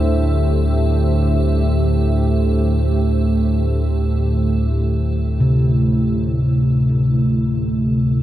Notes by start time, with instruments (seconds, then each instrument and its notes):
Already playing: synth drone D2 A2, ambient pad D3 A3 G4 A4 C5 E5
5.40 singing bowl C3